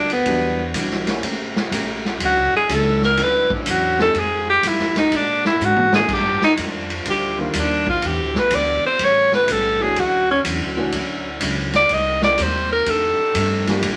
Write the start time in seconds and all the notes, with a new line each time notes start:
Already playing: D2 F3 G3 A#3 D4 F4 G4 A4
0.10 B3, ride
0.25 E2 E3 F#3 G3 B3 D4 E4 F#4 G4, kick, ride
0.74 B1 E3 G3 D4 F#4, kick, hi-hat pedal, ride
0.91 snare
1.07 G3 A#3 C#4 E4 G4, snare, ride
1.23 A1 C#3 A3 A#3 C#4 G4 A#4, kick, ride
1.56 snare
1.71 A#1 A3 C#4 G4 A#4, kick, hi-hat pedal, ride
2.05 snare
2.20 D2 D3 F#3 C#4 D4 E4, kick, ride
2.25 F#4
2.37 C#2
2.52 A1
2.56 G#4
2.69 C#2 D3 F#3 C#4 E4, kick, hi-hat pedal, ride
2.74 A4
3.03 A#4, snare
3.17 D2 D3 F#3 C#4 E4, kick, snare, ride
3.23 B4
3.50 D4, kick
3.66 E2 D3 F#3 C#4 E4, kick, hi-hat pedal, ride
3.70 F#4
3.98 F3 G#3 C4 D#4 G4 A4, snare
4.14 F2 D#3 F3 G3 G#3 D#4 F4 G4, kick, ride
4.19 G#4
4.49 G4
4.63 G2 F3 G#3 D#4 G4, kick, hi-hat pedal, ride
4.67 E4
4.78 F2, snare
4.95 D#2 D#4, snare, ride
5.11 A#2 D3 G#3 A#3 D4 F#4, kick, ride
5.16 D4
5.45 E4, snare
5.59 G#2 A#2 G#3 D4 F#4, hi-hat pedal
5.65 F#4
5.77 high tom
5.92 D#3 G3 A#3 D4 F4 G#4, snare
6.07 G2 D#3 F3 G3 D4 F4, kick, crash
6.13 G4
6.42 D#4, muted upright bass stroke, snare
6.57 F2 D#3 G3 D4 F4, kick, hi-hat pedal, ride
6.90 ride
7.04 D2 D#3 G3 D4 F4, kick, ride
7.10 G4
7.38 D#3 G3 A#3 D4 F4
7.54 D#2 D#3 G3 D4 F4, kick, hi-hat pedal, ride
7.59 D4
7.87 F4, kick
8.01 E2 D3 E3 B3 D4 E4 G4, kick, ride
8.07 G4
8.19 D2
8.34 B1, snare
8.38 B4
8.51 D2 E3 B3 D4 G4, kick, hi-hat pedal, ride
8.55 D5
8.83 C5, muted upright bass stroke
8.99 A1 A2 C#3 G3 A3 B3 C#4 G4, kick, ride
9.04 C#5
9.32 B4, snare
9.47 B1 A2 G3 B3 C#4, kick, hi-hat pedal, ride
9.52 A4
9.80 E3 A3 C#4 D4 F#4 G#4
9.96 D2 D3 F#3 C#4 D4 E4 F#4, kick, ride
10.31 C#4
10.44 E2 D3 F#3 C#4 E4, kick, hi-hat pedal, ride
10.60 D2
10.76 C#2 E3 A3 C#4 D4 F#4
10.92 D2 D3 F#3 C#4, kick, ride
10.96 E4
11.40 C#2 D3 F#3 C#4 E4, kick, hi-hat pedal, ride
11.73 D5, snare, ride
11.89 C2 C3 D#3 G3 A#3 C4 D#4 G4, kick, ride
11.93 D#5
12.22 D5, snare
12.37 D#2 C3 G3 A#3 D#4, kick, hi-hat pedal, ride
12.43 C5
12.72 A#4
12.85 F2 D#3 A3 D4 G4, kick, ride
12.90 A4
13.18 muted upright bass stroke
13.34 F2 G2 D#3 A3 D4, kick, hi-hat pedal, ride
13.67 F3 G3 A#3 D4 G4, snare, ride
13.82 A#1 A#2 F3 G3 A#3 D4 F4 G4, kick, ride